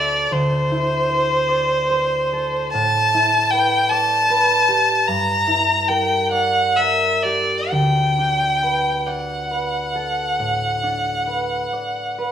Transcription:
0.00 0.30 D2 soft
0.00 0.70 E4 soft
0.00 2.32 A4 soft
0.00 1.08 C5 soft
0.00 0.33 D5 soft
0.00 1.47 D5 soft
0.00 0.63 E5 soft
0.31 2.76 D2 soft
0.31 2.72 C5 medium
0.71 3.13 E4 soft
1.09 1.89 C5 soft
1.49 3.90 D5 soft
1.90 2.77 C5 soft
2.33 5.10 A4 soft
2.73 5.09 A2 soft
2.73 3.52 A5 medium
3.14 5.46 E4 soft
3.51 4.29 B4 soft
3.51 3.91 G5 medium
3.89 6.31 D5 soft
3.89 5.08 A5 medium
4.30 5.10 B4 soft
4.68 7.24 G4 soft
5.07 7.76 G2 soft
5.07 5.90 A#5 medium
5.47 7.75 E4 soft
5.89 6.76 A#4 soft
5.89 6.31 G5 medium
6.32 9.05 D5 soft
6.32 6.77 F#5 medium
6.76 7.75 A#4 soft
6.76 7.24 E5 soft
7.23 7.76 G4 soft
7.23 7.73 D5 soft
7.72 11.62 D2 soft
7.72 9.08 G5 medium
8.18 10.82 D4 soft
8.63 9.50 B4 soft
9.07 11.72 D5 soft
9.07 12.32 F#5 soft
9.51 11.26 B4 soft
9.95 12.32 A4 soft
10.39 12.32 A2 soft
10.83 12.32 D4 soft
11.27 12.17 B4 soft
11.73 12.32 D5 soft
12.18 12.32 B4 soft

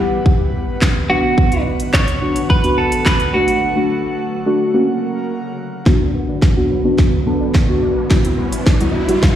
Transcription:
0.00 1.08 E3 medium
0.00 0.74 G3 medium
0.00 1.08 G3 medium
0.00 3.30 B3 medium
0.00 0.74 E4 medium
0.00 0.50 G4 medium
0.00 3.30 B4 medium
0.00 0.75 F#5 loud
0.00 5.82 F#5 medium
0.26 kick loud
0.82 kick loud
0.82 snare medium
0.82 clap loud
1.09 4.71 D3 medium
1.09 3.32 F#3 medium
1.09 1.99 B3 medium
1.09 1.99 D4 medium
1.09 1.62 F#4 loud
1.09 2.00 F#4 medium
1.38 kick loud
1.52 closed hi-hat soft
1.80 closed hi-hat medium
1.94 2.49 C#5 loud
1.94 kick loud
1.94 snare medium
1.94 clap loud
2.08 closed hi-hat soft
2.22 2.51 B3 medium
2.22 2.51 D4 medium
2.22 2.51 F#4 medium
2.36 closed hi-hat medium
2.50 2.76 B4 loud
2.50 kick loud
2.64 3.31 B3 medium
2.64 3.31 D4 medium
2.64 3.31 F#4 medium
2.64 closed hi-hat soft
2.78 3.07 A4 medium
2.92 closed hi-hat medium
3.06 3.35 B4 medium
3.06 kick loud
3.06 snare medium
3.06 clap loud
3.20 closed hi-hat soft
3.34 4.73 F#3 medium
3.34 3.67 A3 medium
3.34 4.73 A3 medium
3.34 3.68 D4 medium
3.34 4.98 F#4 medium
3.34 3.68 F#4 medium
3.34 4.73 A4 medium
3.48 closed hi-hat medium
3.76 4.24 A3 medium
3.76 4.24 D4 medium
3.76 4.24 F#4 medium
4.46 4.74 A3 medium
4.46 4.74 D4 medium
4.46 4.73 F#4 loud
4.74 5.85 C#3 medium
4.74 5.85 F#3 medium
4.74 5.64 A#3 loud
4.74 5.85 A#3 medium
4.74 5.64 C#4 medium
4.74 5.64 F#4 loud
4.74 5.85 A#4 medium
5.86 5.99 B2 medium
5.86 8.08 D3 medium
5.86 8.08 F#3 medium
5.86 6.34 B3 medium
5.86 9.36 B3 medium
5.86 6.34 D4 medium
5.86 9.36 F#4 medium
5.86 6.34 F#4 loud
5.86 9.36 B4 medium
5.86 kick loud
5.86 snare soft
5.86 riser medium
6.00 6.13 D4 medium
6.14 6.27 B3 medium
6.28 6.41 D4 medium
6.42 6.55 F#4 medium
6.42 kick loud
6.42 snare medium
6.56 6.75 B3 medium
6.56 6.76 D4 medium
6.56 6.69 F#4 medium
6.56 6.76 F#4 loud
6.70 6.83 F#3 medium
6.84 6.97 B2 medium
6.84 7.13 B3 medium
6.84 7.13 D4 medium
6.84 7.13 F#4 medium
6.98 7.11 B2 medium
6.98 kick loud
6.98 snare medium
7.26 7.55 B3 medium
7.26 7.39 B3 medium
7.26 7.55 D4 medium
7.26 7.55 A4 loud
7.40 7.53 D4 medium
7.54 7.67 F#4 medium
7.54 kick loud
7.54 snare medium
7.68 7.97 B3 medium
7.68 7.97 D4 medium
7.68 7.81 F#4 medium
7.68 7.98 F#4 loud
7.83 7.95 D4 medium
7.97 8.09 D4 medium
8.10 8.23 E3 loud
8.10 9.36 E3 medium
8.10 8.59 G3 medium
8.10 9.36 G3 medium
8.10 8.59 E4 medium
8.10 8.59 F#4 loud
8.10 kick loud
8.10 snare medium
8.25 8.37 E4 medium
8.25 closed hi-hat medium
8.39 8.51 B3 medium
8.52 8.65 E4 medium
8.52 closed hi-hat medium
8.67 8.79 F#4 loud
8.67 kick loud
8.67 snare medium
8.80 9.00 G3 medium
8.80 9.00 E4 medium
8.80 8.93 F#4 medium
8.80 9.00 F#4 loud
8.80 closed hi-hat medium
8.95 9.08 G3 medium
9.08 9.22 E3 medium
9.08 9.36 G3 medium
9.08 9.36 E4 medium
9.08 9.36 F#4 medium
9.08 closed hi-hat medium
9.23 9.36 E3 medium
9.23 kick loud
9.23 snare medium

